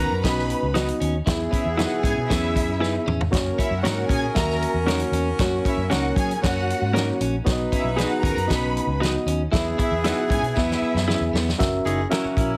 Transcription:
Already playing: reed electric piano B3 D#4 F#4 A#5, clean electric guitar C#4, saxophone section D#4 F#4 B4, string section A#4 A#5
0.11 fingered electric bass F#2
0.23 fingered electric bass B1, reed electric piano B3 D#4 F#4 D#5, clean electric guitar C#4, string section B4 B5, kick, snare, closed hi-hat
0.38 snare
0.50 closed hi-hat
0.62 fingered electric bass C#2
0.74 reed electric piano B3 D#4 F#4 D#5, clean electric guitar D#4 F#4 B4, snare, closed hi-hat
0.88 closed hi-hat
1.00 fingered electric bass D#2, clean electric guitar C#4, closed hi-hat
1.26 fingered electric bass E2, saxophone section B3 E4 G#4, reed electric piano B3 E4 G#4 E5, clean electric guitar E4, kick, snare, closed hi-hat
1.51 clean electric guitar C#4, string section E4 E5, kick, closed hi-hat
1.65 fingered electric bass E2
1.77 reed electric piano B3 E4 G#4 E5, clean electric guitar D#4 E4 G#4 B4, string section F#4 F#5, snare, closed hi-hat
2.02 fingered electric bass G#2, clean electric guitar C#4, string section G#4 G#5, kick, closed hi-hat
2.17 fingered electric bass B2
2.28 fingered electric bass E2, reed electric piano B3 E4 G#4 E5, clean electric guitar C#4, string section E4 E5, kick, snare, closed hi-hat
2.56 kick, closed hi-hat
2.68 fingered electric bass F#2
2.80 reed electric piano B3 E4 G#4 E5, clean electric guitar D#4 E4 G#4 B4, snare
3.06 fingered electric bass E2, clean electric guitar C#4, mid tom
3.21 floor tom
3.31 fingered electric bass F#2, reed electric piano A#3 C#4 F#4 C#5, saxophone section C#4 F#4 A#4, kick, snare, closed hi-hat
3.58 clean electric guitar C#4, string section E4 E5, kick, closed hi-hat
3.71 fingered electric bass F#2
3.83 reed electric piano A#3 C#4 F#4 C#5, clean electric guitar C#4 D#4 F#4 A#4, string section F#4 F#5, snare, closed hi-hat
4.09 fingered electric bass A#2, clean electric guitar C#4, string section G#4 G#5, kick, closed hi-hat
4.34 fingered electric bass D#2, reed electric piano A#3 C#4 F#4 E5, clean electric guitar C#4, string section A#4 A#5, kick, snare, closed hi-hat
4.50 snare
4.62 closed hi-hat
4.74 fingered electric bass E2
4.86 reed electric piano A#3 C#4 F#4 C#5, clean electric guitar C#4 D#4 F#4 A#4, snare, closed hi-hat
5.00 closed hi-hat
5.12 fingered electric bass E2, clean electric guitar C#4, closed hi-hat
5.39 fingered electric bass F#2, reed electric piano A3 C#4 F#4 C#5, clean electric guitar F#4, kick, snare, closed hi-hat
5.46 reed electric piano A#3
5.65 clean electric guitar C#4, string section E4 E5, kick, closed hi-hat
5.77 fingered electric bass F#2
5.90 fingered electric bass C#2, reed electric piano A#3 C#4 F#4 C#5, clean electric guitar C#4 D#4 F#4 A#4, string section F#4 F#5, snare, closed hi-hat
6.16 fingered electric bass F#3, clean electric guitar C#4, string section G#4 G#5, kick, closed hi-hat
6.31 closed hi-hat
6.42 fingered electric bass F#2, reed electric piano A#3 C#4 F#4 C#5, clean electric guitar C#4, string section F#4 F#5, kick, snare, closed hi-hat
6.70 closed hi-hat
6.81 fingered electric bass G#2
6.93 reed electric piano A#3 C#4 F#4 C#5, clean electric guitar C#4 D#4 F#4 A#4, snare, closed hi-hat
7.20 fingered electric bass A#1, clean electric guitar C#4, closed hi-hat
7.45 fingered electric bass B1, reed electric piano B3 D#4 F#4 C#5, saxophone section D#4 F#4 B4, kick, snare, closed hi-hat
7.52 reed electric piano D#5
7.72 clean electric guitar C#4, string section E4 E5, kick, closed hi-hat
7.84 fingered electric bass B1
7.96 reed electric piano B3 D#4 F#4 G#4, clean electric guitar D#4 F#4 B4, string section F#4 F#5, snare, closed hi-hat
8.22 fingered electric bass D#2, clean electric guitar C#4, string section A#4 A#5, kick, closed hi-hat
8.36 fingered electric bass F#2, closed hi-hat
8.47 fingered electric bass B1, reed electric piano B3 D#4 F#4 D#5, clean electric guitar C#4, string section B4 B5, kick, snare, closed hi-hat
8.77 closed hi-hat
8.87 fingered electric bass C#2
9.00 reed electric piano B3 D#4 F#4 D#5, clean electric guitar D#4 F#4 B4, snare, closed hi-hat
9.26 fingered electric bass D#2, clean electric guitar C#4, closed hi-hat
9.51 fingered electric bass E2, reed electric piano B3 E4 G#4 E5, saxophone section B3 E4 G#4, clean electric guitar E4, kick, snare, closed hi-hat
9.78 clean electric guitar E4, string section E4 E5, kick, closed hi-hat
9.91 fingered electric bass E2
10.04 reed electric piano B3 E4 G#4 E5, clean electric guitar D#4 E4 G#4 B4, string section F#4 F#5, snare, closed hi-hat
10.30 fingered electric bass G#2, clean electric guitar C#4, string section G#4 G#5, kick, closed hi-hat
10.42 fingered electric bass B2, closed hi-hat
10.55 fingered electric bass E2, clean electric guitar B3, reed electric piano B3 E4 G#4 E5, string section E4 E5, kick, snare
10.71 snare
10.81 muted fingered electric bass stroke
10.94 fingered electric bass F#2, snare
11.07 reed electric piano B3 E4 G#4 E5, clean electric guitar C#4 E4 G#4 B4, snare
11.20 fingered electric bass E2
11.33 fingered electric bass E2, clean electric guitar B3, snare
11.49 snare
11.58 fingered electric bass F#1, reed electric piano C#4 F#4 A#4 E5, kick, snare, closed hi-hat
11.85 fingered electric bass F#1, saxophone section C#4 E4 G#4, clean electric guitar D#4, closed hi-hat
12.09 saxophone section A#3 C#4 F#4, reed electric piano C#4 F#4 A#4 E5, clean electric guitar C#4 E4 A#4, snare, closed hi-hat
12.25 muted fingered electric bass stroke
12.36 fingered electric bass A#1, saxophone section A#3 C#4 E4, kick, closed hi-hat

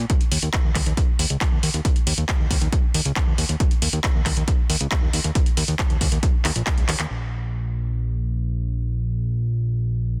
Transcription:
0.10 kick, closed hi-hat
0.21 closed hi-hat
0.32 analog synth bass D#2, open hi-hat
0.42 analog synth bass D#2, closed hi-hat
0.53 kick, clap, closed hi-hat
0.64 analog synth bass D#2
0.75 analog synth bass D#2, kick, clap, open hi-hat
0.86 analog synth bass D#2, closed hi-hat
0.97 kick, closed hi-hat
1.19 analog synth bass D#2, open hi-hat
1.30 analog synth bass C#2, closed hi-hat
1.41 kick, clap, closed hi-hat
1.52 analog synth bass D#2
1.63 analog synth bass D#2, open hi-hat
1.74 analog synth bass D#2, closed hi-hat
1.85 kick, closed hi-hat
1.96 closed hi-hat
2.07 analog synth bass D#2, open hi-hat
2.18 analog synth bass D#2, closed hi-hat
2.29 kick, clap, closed hi-hat
2.40 analog synth bass D#2
2.51 analog synth bass D#2, kick, open hi-hat
2.62 analog synth bass D#2, closed hi-hat
2.72 kick, closed hi-hat
2.94 analog synth bass D#2, open hi-hat
3.05 analog synth bass C#2, closed hi-hat
3.16 kick, clap, closed hi-hat
3.27 analog synth bass D#2
3.38 analog synth bass D#2, open hi-hat
3.49 analog synth bass D#2, closed hi-hat
3.60 kick, closed hi-hat
3.71 closed hi-hat
3.82 analog synth bass D#2, open hi-hat
3.93 analog synth bass D#2, closed hi-hat
4.04 kick, clap, closed hi-hat
4.15 analog synth bass D#2
4.26 analog synth bass D#2, kick, clap, open hi-hat
4.37 analog synth bass D#2, closed hi-hat
4.48 kick, closed hi-hat
4.70 analog synth bass D#2, open hi-hat
4.81 analog synth bass C#2, closed hi-hat
4.91 kick, clap, closed hi-hat
5.03 analog synth bass D#2
5.13 analog synth bass D#2, open hi-hat
5.24 analog synth bass D#2, closed hi-hat
5.35 kick, closed hi-hat
5.46 closed hi-hat
5.57 analog synth bass D#2, open hi-hat
5.68 analog synth bass D#2, closed hi-hat
5.79 kick, clap, closed hi-hat
5.90 analog synth bass D#2, closed hi-hat
6.01 analog synth bass D#2, kick, open hi-hat
6.12 analog synth bass D#2, closed hi-hat
6.23 kick, closed hi-hat
6.45 analog synth bass D#2, clap, open hi-hat
6.56 analog synth bass A#1, closed hi-hat
6.67 kick, clap, closed hi-hat
6.78 analog synth bass C#2, closed hi-hat
6.89 analog synth bass D#2, clap, open hi-hat
7.00 analog synth bass D#2, clap, closed hi-hat
7.10 analog synth bass A#1

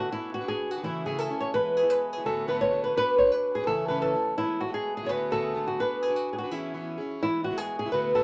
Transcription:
Already playing: steel-string acoustic guitar D3 A3 B3 F#4, hammered dulcimer C#4 E4 A4 B4
0.00 nylon-string guitar F#4, hammered dulcimer F#4
0.11 steel-string acoustic guitar B3 D4 F#4 B4, hammered dulcimer E4, nylon-string guitar E4
0.34 nylon-string guitar F#4, hammered dulcimer F#4
0.41 steel-string acoustic guitar D4 F#4 B4
0.48 nylon-string guitar G#4, hammered dulcimer G#4
0.71 nylon-string guitar F#4, hammered dulcimer F#4
0.76 steel-string acoustic guitar D4 F#4 B4
0.83 steel-string acoustic guitar C#3 E3 A3 C#4 E4, nylon-string guitar E4, hammered dulcimer E4
1.05 steel-string acoustic guitar C#3 E3 A3 C#4 E4, hammered dulcimer G#4, nylon-string guitar G#4
1.19 nylon-string guitar A4, hammered dulcimer A4
1.29 steel-string acoustic guitar A3 C#4 E4
1.40 nylon-string guitar C#5, hammered dulcimer C#5
1.53 steel-string acoustic guitar E3 G#3 B3 E4, hammered dulcimer B4, nylon-string guitar B4
1.77 nylon-string guitar G#4, hammered dulcimer G#4
1.83 steel-string acoustic guitar G#3 B3 E4
1.90 nylon-string guitar B4, hammered dulcimer B4
2.12 hammered dulcimer G#4, nylon-string guitar G#4
2.18 steel-string acoustic guitar G#3 B3 E4
2.25 steel-string acoustic guitar D2 A2 D3 A3 B3 F#4, hammered dulcimer A4, nylon-string guitar A4
2.47 steel-string acoustic guitar D2 A2 D3 A3 B3 F#4, hammered dulcimer B4, nylon-string guitar B4
2.61 hammered dulcimer C#5, nylon-string guitar C#5
2.71 steel-string acoustic guitar D3 A3 B3 F#4
2.83 hammered dulcimer B4, nylon-string guitar B4
2.95 steel-string acoustic guitar B3 D4 F#4 B4, hammered dulcimer B4, nylon-string guitar B4
3.18 nylon-string guitar C#5, hammered dulcimer C#5
3.24 steel-string acoustic guitar D4 F#4 B4
3.32 nylon-string guitar B4, hammered dulcimer B4
3.54 hammered dulcimer G#4, nylon-string guitar G#4
3.60 steel-string acoustic guitar D4 F#4 B4, nylon-string guitar B4
3.67 steel-string acoustic guitar C#3 E3 A3 C#4 E4, nylon-string guitar A4, hammered dulcimer A4
3.88 steel-string acoustic guitar C#3 E3 A3 C#4 E4, nylon-string guitar B4, hammered dulcimer B4
4.02 nylon-string guitar A4, hammered dulcimer A4
4.13 steel-string acoustic guitar A3 C#4 E4
4.38 steel-string acoustic guitar E3 G#3 B3 E4, nylon-string guitar E4, hammered dulcimer E4
4.60 nylon-string guitar F#4, hammered dulcimer F#4
4.67 steel-string acoustic guitar G#3 B3 E4
4.73 hammered dulcimer G#4, nylon-string guitar G#4
4.95 hammered dulcimer G#4, nylon-string guitar G#4
5.03 steel-string acoustic guitar G#3 B3 E4, nylon-string guitar C#5
5.08 steel-string acoustic guitar D2 A2 D3 A3 B3 F#4, hammered dulcimer B4, nylon-string guitar B4
5.30 steel-string acoustic guitar D2 A2 D3 A3 B3 F#4, hammered dulcimer A4, nylon-string guitar A4
5.43 hammered dulcimer G#4
5.54 steel-string acoustic guitar D3 A3 B3 F#4
5.66 hammered dulcimer F#4, nylon-string guitar F#4
5.79 steel-string acoustic guitar B3 D4 F#4 B4, hammered dulcimer B4, nylon-string guitar B4
6.01 hammered dulcimer G#4, nylon-string guitar G#4
6.08 steel-string acoustic guitar D4 F#4 B4
6.14 hammered dulcimer F#4, nylon-string guitar F#4
6.33 nylon-string guitar G#4
6.37 hammered dulcimer F#4, nylon-string guitar F#4
6.44 steel-string acoustic guitar D4 F#4 B4, hammered dulcimer F#4
6.50 steel-string acoustic guitar E3 B3 C#4 E4 G#4, hammered dulcimer E4, nylon-string guitar E4
6.74 steel-string acoustic guitar E3 B3 C#4 E4 G#4
6.98 steel-string acoustic guitar C#4 E4 G#4
7.21 steel-string acoustic guitar E3 G#3 B3 E4, hammered dulcimer E4, nylon-string guitar E4
7.43 hammered dulcimer F#4, nylon-string guitar F#4
7.51 steel-string acoustic guitar G#3 B3 E4
7.57 hammered dulcimer G#4, nylon-string guitar G#4
7.79 hammered dulcimer G#4, nylon-string guitar G#4
7.86 steel-string acoustic guitar G#3 B3 E4
7.92 steel-string acoustic guitar D2 A2 D3 A3 B3 F#4, nylon-string guitar B4, hammered dulcimer B4
8.14 steel-string acoustic guitar D2 A2 D3 A3 B3 F#4, hammered dulcimer A4, nylon-string guitar A4

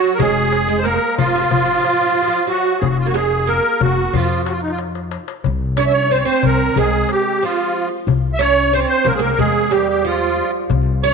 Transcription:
Already playing: oud F#3, accordion F#4
0.14 accordion A#4
0.19 upright bass F1, oud G#3, accordion G#4, darbuka dum
0.52 darbuka tek
0.68 oud G#3
0.79 accordion C5
0.83 oud A#3, accordion A#4
1.18 upright bass F1, oud F3, accordion F4, darbuka dum
1.26 oud F3
1.35 oud F3
1.41 oud F3
1.49 upright bass F1, oud F3, darbuka dum
1.56 oud F3
1.65 oud F3
1.70 oud F3
1.78 oud F3
1.85 oud F3, darbuka tek
1.93 oud F3
2.01 oud F3
2.06 oud F3
2.14 oud F3
2.22 oud F3
2.27 oud F3
2.47 oud F#3, accordion F#4
2.79 upright bass F1, accordion G#4, darbuka dum
2.89 accordion F#4
2.99 accordion F4
3.06 oud A#3, accordion F#4
3.14 oud G#3, accordion G#4, darbuka tek
3.47 oud A#3, accordion A#4
3.81 upright bass F1, accordion F#4, darbuka dum
4.13 upright bass F2, oud F3, accordion F4, darbuka dum
4.44 accordion F#4, darbuka tek
4.52 accordion F4
4.62 accordion D#4, darbuka ka
4.71 accordion F4
4.78 darbuka tek
4.95 darbuka ka
5.11 darbuka tek
5.28 darbuka ka
5.44 upright bass C2, darbuka dum
5.77 oud C#4, accordion C#5, darbuka tek
5.86 accordion E5
5.93 accordion C#5
6.11 oud C4, accordion C5
6.19 accordion C#5
6.25 oud C4, accordion C5
6.43 upright bass C2, accordion A#4, darbuka dum
6.76 upright bass C2, oud G#3, accordion G#4, darbuka dum
6.93 darbuka ka
7.09 accordion G4, darbuka tek
7.43 oud F3, accordion F4
8.07 upright bass C2, darbuka dum
8.34 accordion E5
8.39 oud C#4, accordion C#5, darbuka tek
8.73 oud C4, accordion C5
8.80 accordion C#5
8.88 accordion C5
9.04 upright bass C2, oud A#3, accordion A#4, darbuka dum
9.14 accordion G#4
9.19 oud A#3, accordion A#4
9.33 accordion A#4
9.38 upright bass E2, oud G#3, accordion G#4, darbuka dum
9.55 darbuka ka
9.71 oud G3, accordion G4, darbuka tek
9.89 accordion G4
10.04 oud F3, accordion F4
10.70 upright bass C2, darbuka dum
11.03 oud C#4, accordion C#5

